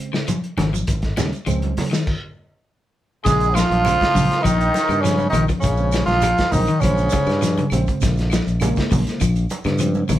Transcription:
Already playing: C#3 G#3 C4
0.13 C#3, snare, claves, shekere
0.28 F3, closed hi-hat, high conga, low conga, shekere
0.44 closed hi-hat
0.57 G#1 D#3, snare, closed hi-hat, high conga, low conga, claves, shekere
0.73 F3, closed hi-hat, high conga, shekere
0.87 G#1, kick, closed hi-hat, shekere
1.02 kick, snare, closed hi-hat
1.16 D#2 C#3 G3 G#3 C#4, snare, closed hi-hat, high conga, claves, shekere
1.33 closed hi-hat, shekere
1.46 C#2 C#3 F3 G#3 C4, closed hi-hat, claves, shekere
1.62 closed hi-hat, high conga
1.77 snare, open hi-hat, high conga, low conga, shekere
1.91 D#3, snare, closed hi-hat, shekere
2.07 kick, crash
3.24 A#1 C#3 G#3 G#4, kick, snare, closed hi-hat, shekere
3.40 closed hi-hat, shekere
3.53 F3 F4, closed hi-hat, claves, shekere
3.57 snare
3.70 A#1, closed hi-hat, high conga, shekere
3.85 C#3 G#3 C4, closed hi-hat, high conga, claves, shekere
4.01 kick, snare, closed hi-hat, shekere
4.15 A#1 C#3, kick, open hi-hat, high conga, low conga, shekere
4.31 snare, closed hi-hat, shekere
4.42 A#1 D#3 F3 D#4, kick, closed hi-hat, high conga, claves
4.46 shekere
4.61 closed hi-hat, shekere
4.74 snare, closed hi-hat, high conga, shekere
4.89 G2, muted clean electric guitar stroke, closed hi-hat, low conga, claves, shekere
5.01 C#3 F3 C#4, shekere
5.05 G#3 C4, snare, closed hi-hat
5.18 high conga, shekere
5.30 A#1 D#3 D#4, low conga, claves, shekere
5.34 closed hi-hat
5.48 F3, kick, closed hi-hat, shekere
5.59 C#3 C#4, shekere
5.64 A#1, kick, closed hi-hat
5.77 C#3 G#3 C4, shekere
5.92 G3, snare, closed hi-hat, claves, shekere
6.06 A#1 F3 F4, high conga, shekere
6.10 snare
6.22 F3, closed hi-hat, high conga, claves, shekere
6.38 kick, snare, closed hi-hat, shekere
6.52 A#1 C#3 D#3 G#3 C4 D#4, kick, open hi-hat, high conga, low conga, shekere
6.67 D#3, closed hi-hat, shekere
6.80 A#1 C#3 G#3 C#4 C5, kick, closed hi-hat, high conga, claves, shekere
6.97 closed hi-hat, shekere
7.10 C#3, kick, closed hi-hat, high conga, shekere
7.26 G2, closed hi-hat, claves, shekere
7.30 snare
7.42 F3, snare, closed hi-hat, shekere
7.57 C#3, closed hi-hat, high conga, shekere
7.70 A#1 C#3 G#3 C4, closed hi-hat, low conga, claves, shekere
7.87 kick, closed hi-hat, shekere
8.01 A#1 C#3, kick, snare, closed hi-hat, shekere
8.17 snare, closed hi-hat, shekere
8.30 F3, snare, closed hi-hat, claves, shekere
8.47 A#1, closed hi-hat, shekere
8.60 C#3 G#3 A#3, closed hi-hat, high conga, claves, shekere
8.76 kick, snare, closed hi-hat, shekere
8.91 A#1 C#3, kick, open hi-hat, high conga, low conga, shekere
9.07 snare, closed hi-hat, shekere
9.21 A#1 F3, kick, closed hi-hat, claves, shekere
9.36 closed hi-hat, shekere
9.50 closed hi-hat, high conga, shekere
9.64 G2 C#3, snare, closed hi-hat, low conga, claves, shekere
9.78 C#3 F3 G#3 C4, closed hi-hat, shekere
9.94 high conga, shekere
10.09 A#1 D#3, closed hi-hat, low conga, claves, shekere

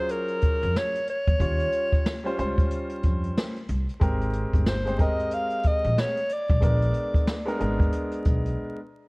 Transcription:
Already playing: F#3 C#4 F4 G#4 C5
0.09 A#4, closed hi-hat
0.28 closed hi-hat
0.41 kick, closed hi-hat
0.62 F2, closed hi-hat
0.76 C#5, snare
0.95 closed hi-hat
1.07 C#5, closed hi-hat
1.27 E2, kick, closed hi-hat
1.39 D#2 G3 C#4 F4 C#5, kick, closed hi-hat
1.60 closed hi-hat
1.72 closed hi-hat
1.93 kick, closed hi-hat
2.06 snare
2.24 G3 C#4 F4 C5, closed hi-hat
2.36 C#2 G3 C#4 F4 C5, closed hi-hat
2.58 kick, closed hi-hat
2.70 closed hi-hat
2.89 closed hi-hat
3.03 F2, kick, closed hi-hat
3.24 closed hi-hat
3.38 snare
3.56 closed hi-hat
3.68 C2, closed hi-hat
3.89 closed hi-hat
4.00 G#1 G#3 C4 G4 A#4, kick, closed hi-hat
4.21 closed hi-hat
4.33 closed hi-hat
4.53 G1, kick, closed hi-hat
4.66 C5, snare
4.85 G#3 C4 G4 C5, closed hi-hat
4.98 G#3 C4 G4 A#4 D#5, kick, closed hi-hat
5.19 closed hi-hat
5.31 F5, closed hi-hat
5.50 closed hi-hat
5.63 D#5, kick, closed hi-hat
5.84 A#1, closed hi-hat
5.98 C#5, snare
6.17 closed hi-hat
6.29 D5, closed hi-hat
6.49 B1, kick, closed hi-hat
6.60 A#1 G#3 B3 D4 A#4, kick, closed hi-hat
6.82 closed hi-hat
6.94 closed hi-hat
7.14 kick, closed hi-hat
7.27 snare
7.46 G#3 B3 D4 A#4, closed hi-hat
7.58 G#1 G#3 B3 D4 A#4, closed hi-hat
7.80 kick, closed hi-hat
7.92 closed hi-hat
8.11 closed hi-hat
8.25 B1, kick, closed hi-hat
8.45 closed hi-hat

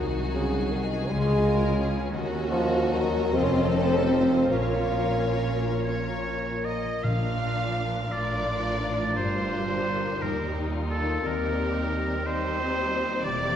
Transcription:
Already playing: D#4 F#4 D#5
0.00 C2 C3 G#4 G#5
0.17 F#3
0.35 C#3 G#3 C#4
0.54 F#4
0.72 D#3 D#4 D#5
0.92 G#4
1.10 C#2 C#3 G#3 C#4 F4 G#4
1.29 C#4
1.45 G#3 A#4
1.62 F4
1.79 G#4 C#5
1.96 G#4
2.13 D#2 D#3 F#4 A#4 D#5
2.32 A#3
2.51 F3 C#4 F4
2.72 D#4
2.93 F#3 F#4 A#4
3.14 C#5
3.33 F1 F2 F3 C4 F4 A4 C5
3.44 C#4
3.52 C4
3.60 C#4
3.69 C4
3.74 C#4 D#4 A4
3.86 C4
3.93 C#4 A4
4.04 C4
4.12 C5
4.31 D#5
4.50 A#1 A#2 A#3 C#4 A#4 C#5
4.72 F3
4.94 C#4
5.17 F4
5.40 A#4
5.63 C#5
5.84 C#5 F5
6.05 A#5
6.26 F5
6.46 A#4
6.65 C#4 D#5
6.84 F3
7.02 A#1 A#2 F3 D4 F4 A#4 F5
7.39 F4
7.75 D4
8.10 A1 A2 F3 D4 F4 A#4 D5
8.46 D#4
8.81 F4
9.15 G1 G2 G3 D4 F4 A#4 C5
9.51 D4
9.86 F4 A#4
10.21 D#2 D#3 G3 D#4 G4 A#4
10.56 D#4
10.73 F4
10.90 G4 A4 A#4
11.25 D#2 D#3 G3 C4 D#4 G4 A#4
11.60 G4
11.93 D#4
12.26 G3 C4 D#4 G4 C5
12.59 F4
12.93 G4
13.24 E1 E2 E3 G3 A#3 C4 G4 D5

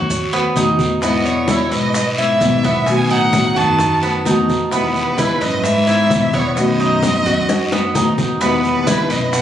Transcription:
Already playing: D#2 F#4
0.09 muted nylon-string guitar stroke, high conga, low conga, long guiro, maracas
0.32 A3 B3 F#4, high conga, maracas
0.56 E2 B2 D#3 A3 B3 D#4 F#4, high conga, short guiro, maracas
0.79 A3 B3 F#4, high conga, short guiro, maracas
1.02 G#2 B2 G#3 B3 E4 D#5, high bongo, high conga, long guiro, maracas
1.25 E2 C#5, high conga, maracas
1.48 B2 G#3 B3 E4, high bongo, high conga, short guiro, maracas
1.71 B1 G#2 B4 D#5, high bongo, short guiro, maracas
1.94 muted nylon-string guitar stroke, high bongo, high conga, long guiro, maracas
2.17 G#2 G#3 B3 E4 E5, high bongo, high conga, maracas
2.40 B1 B2 D#3 G#3 B3 E4, high bongo, low bongo, high conga, short guiro, maracas
2.63 G#3 B3 E4, high bongo, high conga, short guiro, maracas
2.86 B2 D#3 A3 B3 F#4 G#5, high bongo, high conga, long guiro, maracas
3.10 A2 D#4 F#5, high conga, maracas
3.33 B2 D#3 A3 B3 F#4, high bongo, high conga, short guiro, maracas
3.56 F#2 D#3 F#4 A5, high bongo, high conga, low conga, short guiro, maracas
3.79 muted nylon-string guitar stroke, high bongo, high conga, low conga, long guiro, maracas
4.02 A3 B3 F#4, high bongo, high conga, maracas
4.25 E2 B2 D#3 A3 B3 D#4 F#4, high bongo, low bongo, high conga, short guiro, maracas
4.49 A3 B3 F#4, high bongo, high conga, short guiro, maracas
4.71 D#2 B2 G#3 B3 E4 B4, high bongo, high conga, long guiro, maracas
4.95 D#2 B4, high conga, maracas
5.18 B2 G#3 B3 E4, high bongo, high conga, short guiro, maracas
5.41 F#2 G#2 B4 D#5, high bongo, short guiro, maracas
5.64 G#2 E5, muted nylon-string guitar stroke, high bongo, high conga, long guiro, maracas
5.87 G#3 B3 E4, high bongo, high conga, maracas
6.10 B1 B2 D#3 G#3 B3 E4, high bongo, low bongo, high conga, short guiro, maracas
6.33 E2 G#3 B3 E4 C#5, high bongo, high conga, short guiro, maracas
6.57 F#2 B2 D#3 A3 B3 F#4 D#5, high bongo, high conga, long guiro, maracas
6.80 D#4, high conga, maracas
7.03 B2 D#3 A3 B3 F#4, high bongo, high conga, short guiro, maracas
7.26 F#2 F#4, high bongo, high conga, low conga, short guiro, maracas
7.49 muted nylon-string guitar stroke, high bongo, high conga, long guiro, maracas
7.72 A3 B3 F#4, high bongo, high conga, maracas
7.94 E2 B2 D#3 A3 B3 D#4 F#4, low bongo, high conga, short guiro, maracas
8.18 A3 B3 F#4, low bongo, high conga, short guiro, maracas
8.40 D#2 B2 G#3 B3 E4 B4, high bongo, high conga, long guiro, maracas
8.64 D#2 B4, high conga, maracas
8.87 B2 G#3 B3 E4, high bongo, high conga, short guiro, maracas
9.10 B1 F#2 B4 D#5, high bongo, short guiro, maracas
9.33 B2 F#5, muted nylon-string guitar stroke, high bongo, high conga, long guiro, maracas

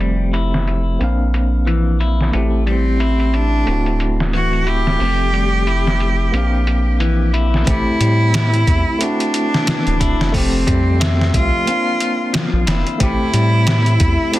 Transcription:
Already playing: F1 F3 A3 C4 G4
0.00 G3, closed hi-hat
0.33 E4, closed hi-hat
0.54 snare
0.67 closed hi-hat
0.99 A#1 A#3 C4 D4, closed hi-hat
1.04 F5
1.34 closed hi-hat
1.67 E3, closed hi-hat
2.00 E4, closed hi-hat
2.21 snare
2.32 A1 A3 C4 E4, closed hi-hat
2.37 G4
2.67 G3 C4, closed hi-hat
3.00 E4, closed hi-hat
3.20 closed hi-hat
3.34 D4, closed hi-hat
3.66 D1 A3 C4 E4, closed hi-hat
3.71 F#4
3.86 closed hi-hat
4.00 closed hi-hat
4.20 snare
4.33 E3 F#4, closed hi-hat
4.53 closed hi-hat
4.67 E4 G4, closed hi-hat
4.87 snare
4.99 F1 F3 A3 C4, open hi-hat
5.04 G4
5.33 G3, closed hi-hat
5.67 E4, closed hi-hat
5.87 snare
6.00 closed hi-hat
6.32 A#1 A#3 C4 D4, closed hi-hat
6.37 F5
6.67 closed hi-hat
7.00 E3, closed hi-hat
7.33 E4, closed hi-hat
7.54 snare
7.66 A1 A3 C4 E4, kick, closed hi-hat
7.71 G4
8.00 A2 G3, closed hi-hat
8.34 E4, snare, closed hi-hat
8.54 closed hi-hat
8.67 E2, kick, closed hi-hat
8.99 A3 C4 D4 E4, closed hi-hat
9.04 F#4
9.20 closed hi-hat
9.34 closed hi-hat
9.54 snare
9.67 E3, snare, closed hi-hat
9.87 D1, closed hi-hat
10.00 E4, kick, closed hi-hat
10.20 F1, snare
10.32 F3 A3 C4, kick, open hi-hat
10.38 G4
10.66 F2 G3, kick, closed hi-hat
11.00 E5, snare, closed hi-hat
11.21 snare
11.34 C2 F4, kick, closed hi-hat
11.66 A#3 C4 D4, closed hi-hat
11.71 F5
12.00 closed hi-hat
12.33 F3, snare, closed hi-hat
12.53 A#1
12.67 F1 E4, snare, closed hi-hat
12.87 closed hi-hat
12.98 A1 A3 C4 E4, kick, closed hi-hat
13.03 E4 G4
13.34 A2 G3, closed hi-hat
13.67 E4, snare, closed hi-hat
13.86 closed hi-hat
14.00 E2, kick, closed hi-hat
14.32 A3 C4 D4 E4, closed hi-hat

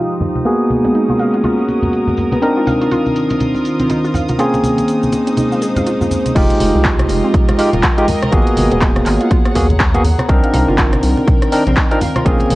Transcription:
Already playing: F3 G#3 D#4 F4 G4 C5 F5 G5 D#6
0.11 cabasa
0.21 muted conga, low conga, cabasa
0.35 closed hi-hat, high conga, cabasa
0.45 G#3 A#3 B3 F#4 G#4 F#5 A#5, closed hi-hat, muted conga, cabasa
0.70 closed hi-hat, high conga, cabasa
0.84 B3 C#4, closed hi-hat, muted conga, cabasa
0.95 D#4, closed hi-hat, cabasa
1.06 F4 A#4, muted conga, high conga, cabasa
1.19 F5, closed hi-hat, cabasa
1.34 F4 F#4, closed hi-hat, cabasa
1.44 F4, closed hi-hat, muted conga, high conga, cabasa
1.59 cabasa
1.68 closed hi-hat, muted conga, cabasa
1.82 closed hi-hat, high conga, low conga, cabasa
1.93 closed hi-hat, cabasa
2.07 muted conga, low conga, cabasa
2.17 closed hi-hat, low conga, cabasa
2.32 B3, closed hi-hat, muted conga, high conga, cabasa
2.42 D#3 C4 D4 D#4 A#4 C5, closed hi-hat, cabasa
2.57 F4
2.67 F5, closed hi-hat, muted conga, high conga, cabasa
2.81 F4, closed hi-hat, cabasa
2.91 F4, closed hi-hat, muted conga, cabasa
3.02 F4, cabasa
3.07 high conga
3.16 closed hi-hat, cabasa
3.30 closed hi-hat, muted conga, cabasa
3.41 closed hi-hat, high conga, cabasa
3.55 muted conga, cabasa
3.65 closed hi-hat, cabasa
3.79 C4, closed hi-hat, high conga, cabasa
3.90 D#4, closed hi-hat, muted conga, cabasa
4.04 F4, cabasa
4.14 F5, muted conga, low conga, cabasa
4.28 F4, closed hi-hat, high conga, cabasa
4.38 A#3 C4 C#4 F4 G#4 C5 G#5, closed hi-hat, cabasa
4.54 muted conga, cabasa
4.64 closed hi-hat, high conga, cabasa
4.78 closed hi-hat, muted conga, cabasa
4.88 D#4 C5, closed hi-hat, cabasa
5.03 high conga, cabasa
5.12 closed hi-hat, muted conga, cabasa
5.27 G#3 C4, closed hi-hat, cabasa
5.37 D#4, closed hi-hat, muted conga, high conga, cabasa
5.52 F4, cabasa
5.62 G#4, closed hi-hat, cabasa
5.76 F5, closed hi-hat, muted conga, high conga, low conga, cabasa
5.86 F4, closed hi-hat, cabasa
6.01 F4, muted conga, low conga, cabasa
6.11 closed hi-hat, low conga, cabasa
6.26 closed hi-hat, high conga, cabasa
6.35 F1 G#3 D#4 F4 G4 D#5 G5, kick, closed hi-hat, crash
6.50 closed hi-hat, muted conga
6.57 F1 A#4, open hi-hat, high conga
6.75 C2
6.85 kick, clap, closed hi-hat, muted conga
6.91 D#5
6.99 cross-stick, closed hi-hat, high conga
7.09 F1, open hi-hat, muted conga
7.24 C4
7.34 D#4, kick, closed hi-hat, high conga
7.48 F4, cross-stick, closed hi-hat, muted conga
7.58 G#3 D#4 F4 G4 F5, open hi-hat
7.73 D#1 F4, closed hi-hat, muted conga, high conga
7.83 F4, kick, clap, closed hi-hat
7.97 G#3 D#4 F4 G4, closed hi-hat
8.08 open hi-hat, muted conga, low conga
8.22 cross-stick, closed hi-hat, high conga
8.32 G#1 A#3 B3 F#4 G#4 F#5 A#5, kick, closed hi-hat, muted conga
8.47 closed hi-hat
8.57 G#1, open hi-hat, high conga
8.67 C#5
8.71 D#1 B3, closed hi-hat, muted conga
8.82 D#4, kick, clap, closed hi-hat
8.96 F4, cross-stick, closed hi-hat, muted conga, high conga
9.06 G#1 F5, clap, open hi-hat
9.21 F4 F#5, closed hi-hat
9.31 F4, kick, closed hi-hat, muted conga, high conga
9.45 cross-stick, closed hi-hat
9.55 D#2 A#3 B3 F#4 G#4, kick, open hi-hat, muted conga
9.70 closed hi-hat, high conga, low conga
9.80 kick, clap, closed hi-hat
9.94 A#3 B3 F#4 G#4, closed hi-hat, muted conga, low conga
10.04 open hi-hat, low conga
10.18 B3, cross-stick, closed hi-hat, muted conga, high conga
10.29 C2 D#3 C4 D4 D#4 A#4 D5, kick, closed hi-hat
10.44 F4, closed hi-hat
10.54 C2 F5, open hi-hat, muted conga, high conga
10.68 G1 F4
10.78 F4, kick, clap, closed hi-hat, muted conga
10.92 cross-stick, closed hi-hat, high conga
11.03 C2, open hi-hat
11.17 G5, muted conga
11.28 kick, closed hi-hat, high conga
11.42 cross-stick, closed hi-hat, muted conga
11.52 C4 D4 D#4 A#4, open hi-hat
11.67 A#1 C4, closed hi-hat, high conga
11.77 D#4, kick, clap, closed hi-hat, muted conga
11.91 C4 D4 D#4 F4 A#4, closed hi-hat
12.01 F5, open hi-hat, muted conga, low conga
12.16 F4, cross-stick, closed hi-hat, high conga
12.25 A#1 A#3 C4 C#4 F4 G#4 C5 G#5, kick, closed hi-hat
12.40 closed hi-hat, muted conga
12.45 G#5
12.50 A#1, open hi-hat, high conga

